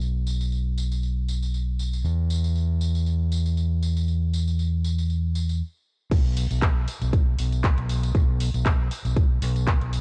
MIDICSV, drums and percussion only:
0, 0, Header, 1, 2, 480
1, 0, Start_track
1, 0, Tempo, 508475
1, 11, Time_signature, 4, 2, 24, 8
1, 9447, End_track
2, 0, Start_track
2, 0, Title_t, "Drums"
2, 12, Note_on_c, 9, 54, 32
2, 107, Note_off_c, 9, 54, 0
2, 252, Note_on_c, 9, 54, 80
2, 347, Note_off_c, 9, 54, 0
2, 384, Note_on_c, 9, 54, 46
2, 478, Note_off_c, 9, 54, 0
2, 492, Note_on_c, 9, 54, 32
2, 587, Note_off_c, 9, 54, 0
2, 733, Note_on_c, 9, 54, 79
2, 827, Note_off_c, 9, 54, 0
2, 865, Note_on_c, 9, 54, 44
2, 959, Note_off_c, 9, 54, 0
2, 973, Note_on_c, 9, 54, 33
2, 1067, Note_off_c, 9, 54, 0
2, 1213, Note_on_c, 9, 54, 75
2, 1307, Note_off_c, 9, 54, 0
2, 1345, Note_on_c, 9, 54, 45
2, 1439, Note_off_c, 9, 54, 0
2, 1454, Note_on_c, 9, 54, 33
2, 1548, Note_off_c, 9, 54, 0
2, 1692, Note_on_c, 9, 54, 77
2, 1787, Note_off_c, 9, 54, 0
2, 1824, Note_on_c, 9, 54, 45
2, 1919, Note_off_c, 9, 54, 0
2, 1933, Note_on_c, 9, 54, 32
2, 2027, Note_off_c, 9, 54, 0
2, 2173, Note_on_c, 9, 54, 81
2, 2267, Note_off_c, 9, 54, 0
2, 2304, Note_on_c, 9, 54, 45
2, 2398, Note_off_c, 9, 54, 0
2, 2413, Note_on_c, 9, 54, 35
2, 2507, Note_off_c, 9, 54, 0
2, 2652, Note_on_c, 9, 54, 80
2, 2747, Note_off_c, 9, 54, 0
2, 2784, Note_on_c, 9, 54, 43
2, 2878, Note_off_c, 9, 54, 0
2, 2892, Note_on_c, 9, 54, 33
2, 2986, Note_off_c, 9, 54, 0
2, 3132, Note_on_c, 9, 54, 76
2, 3227, Note_off_c, 9, 54, 0
2, 3263, Note_on_c, 9, 54, 44
2, 3358, Note_off_c, 9, 54, 0
2, 3372, Note_on_c, 9, 54, 33
2, 3467, Note_off_c, 9, 54, 0
2, 3612, Note_on_c, 9, 54, 75
2, 3707, Note_off_c, 9, 54, 0
2, 3744, Note_on_c, 9, 54, 46
2, 3838, Note_off_c, 9, 54, 0
2, 3853, Note_on_c, 9, 54, 33
2, 3947, Note_off_c, 9, 54, 0
2, 4093, Note_on_c, 9, 54, 82
2, 4187, Note_off_c, 9, 54, 0
2, 4224, Note_on_c, 9, 54, 46
2, 4319, Note_off_c, 9, 54, 0
2, 4333, Note_on_c, 9, 54, 32
2, 4428, Note_off_c, 9, 54, 0
2, 4573, Note_on_c, 9, 54, 76
2, 4668, Note_off_c, 9, 54, 0
2, 4705, Note_on_c, 9, 54, 44
2, 4799, Note_off_c, 9, 54, 0
2, 4813, Note_on_c, 9, 54, 33
2, 4908, Note_off_c, 9, 54, 0
2, 5053, Note_on_c, 9, 54, 76
2, 5147, Note_off_c, 9, 54, 0
2, 5184, Note_on_c, 9, 54, 44
2, 5279, Note_off_c, 9, 54, 0
2, 5771, Note_on_c, 9, 36, 115
2, 5771, Note_on_c, 9, 42, 68
2, 5771, Note_on_c, 9, 49, 104
2, 5773, Note_on_c, 9, 54, 33
2, 5866, Note_off_c, 9, 36, 0
2, 5866, Note_off_c, 9, 42, 0
2, 5866, Note_off_c, 9, 49, 0
2, 5868, Note_off_c, 9, 54, 0
2, 6011, Note_on_c, 9, 46, 104
2, 6013, Note_on_c, 9, 54, 80
2, 6105, Note_off_c, 9, 46, 0
2, 6107, Note_off_c, 9, 54, 0
2, 6143, Note_on_c, 9, 42, 57
2, 6144, Note_on_c, 9, 54, 44
2, 6237, Note_off_c, 9, 42, 0
2, 6239, Note_off_c, 9, 54, 0
2, 6251, Note_on_c, 9, 36, 119
2, 6251, Note_on_c, 9, 42, 68
2, 6252, Note_on_c, 9, 39, 126
2, 6253, Note_on_c, 9, 54, 33
2, 6346, Note_off_c, 9, 36, 0
2, 6346, Note_off_c, 9, 39, 0
2, 6346, Note_off_c, 9, 42, 0
2, 6348, Note_off_c, 9, 54, 0
2, 6492, Note_on_c, 9, 46, 105
2, 6494, Note_on_c, 9, 54, 80
2, 6586, Note_off_c, 9, 46, 0
2, 6588, Note_off_c, 9, 54, 0
2, 6623, Note_on_c, 9, 42, 58
2, 6625, Note_on_c, 9, 54, 45
2, 6718, Note_off_c, 9, 42, 0
2, 6720, Note_off_c, 9, 54, 0
2, 6731, Note_on_c, 9, 36, 122
2, 6732, Note_on_c, 9, 42, 71
2, 6734, Note_on_c, 9, 54, 34
2, 6826, Note_off_c, 9, 36, 0
2, 6827, Note_off_c, 9, 42, 0
2, 6829, Note_off_c, 9, 54, 0
2, 6972, Note_on_c, 9, 46, 105
2, 6974, Note_on_c, 9, 54, 74
2, 7066, Note_off_c, 9, 46, 0
2, 7068, Note_off_c, 9, 54, 0
2, 7103, Note_on_c, 9, 42, 55
2, 7105, Note_on_c, 9, 54, 43
2, 7198, Note_off_c, 9, 42, 0
2, 7200, Note_off_c, 9, 54, 0
2, 7211, Note_on_c, 9, 36, 121
2, 7212, Note_on_c, 9, 42, 71
2, 7213, Note_on_c, 9, 39, 124
2, 7214, Note_on_c, 9, 54, 34
2, 7306, Note_off_c, 9, 36, 0
2, 7306, Note_off_c, 9, 42, 0
2, 7307, Note_off_c, 9, 39, 0
2, 7308, Note_off_c, 9, 54, 0
2, 7343, Note_on_c, 9, 42, 66
2, 7437, Note_off_c, 9, 42, 0
2, 7452, Note_on_c, 9, 46, 108
2, 7454, Note_on_c, 9, 54, 75
2, 7546, Note_off_c, 9, 46, 0
2, 7548, Note_off_c, 9, 54, 0
2, 7584, Note_on_c, 9, 42, 60
2, 7586, Note_on_c, 9, 54, 47
2, 7678, Note_off_c, 9, 42, 0
2, 7680, Note_off_c, 9, 54, 0
2, 7691, Note_on_c, 9, 36, 119
2, 7692, Note_on_c, 9, 42, 63
2, 7694, Note_on_c, 9, 54, 31
2, 7786, Note_off_c, 9, 36, 0
2, 7786, Note_off_c, 9, 42, 0
2, 7788, Note_off_c, 9, 54, 0
2, 7932, Note_on_c, 9, 46, 111
2, 7934, Note_on_c, 9, 54, 79
2, 8026, Note_off_c, 9, 46, 0
2, 8028, Note_off_c, 9, 54, 0
2, 8064, Note_on_c, 9, 42, 53
2, 8066, Note_on_c, 9, 54, 43
2, 8158, Note_off_c, 9, 42, 0
2, 8160, Note_off_c, 9, 54, 0
2, 8172, Note_on_c, 9, 36, 123
2, 8172, Note_on_c, 9, 42, 67
2, 8173, Note_on_c, 9, 39, 123
2, 8266, Note_off_c, 9, 36, 0
2, 8266, Note_off_c, 9, 42, 0
2, 8267, Note_off_c, 9, 39, 0
2, 8412, Note_on_c, 9, 46, 106
2, 8414, Note_on_c, 9, 54, 75
2, 8507, Note_off_c, 9, 46, 0
2, 8509, Note_off_c, 9, 54, 0
2, 8545, Note_on_c, 9, 42, 54
2, 8546, Note_on_c, 9, 54, 44
2, 8639, Note_off_c, 9, 42, 0
2, 8641, Note_off_c, 9, 54, 0
2, 8651, Note_on_c, 9, 36, 126
2, 8652, Note_on_c, 9, 42, 67
2, 8654, Note_on_c, 9, 54, 32
2, 8746, Note_off_c, 9, 36, 0
2, 8746, Note_off_c, 9, 42, 0
2, 8748, Note_off_c, 9, 54, 0
2, 8893, Note_on_c, 9, 46, 110
2, 8895, Note_on_c, 9, 54, 75
2, 8987, Note_off_c, 9, 46, 0
2, 8989, Note_off_c, 9, 54, 0
2, 9024, Note_on_c, 9, 42, 53
2, 9026, Note_on_c, 9, 54, 43
2, 9118, Note_off_c, 9, 42, 0
2, 9120, Note_off_c, 9, 54, 0
2, 9131, Note_on_c, 9, 36, 127
2, 9132, Note_on_c, 9, 42, 68
2, 9133, Note_on_c, 9, 39, 125
2, 9226, Note_off_c, 9, 36, 0
2, 9227, Note_off_c, 9, 42, 0
2, 9228, Note_off_c, 9, 39, 0
2, 9265, Note_on_c, 9, 42, 65
2, 9359, Note_off_c, 9, 42, 0
2, 9373, Note_on_c, 9, 46, 111
2, 9375, Note_on_c, 9, 54, 72
2, 9447, Note_off_c, 9, 46, 0
2, 9447, Note_off_c, 9, 54, 0
2, 9447, End_track
0, 0, End_of_file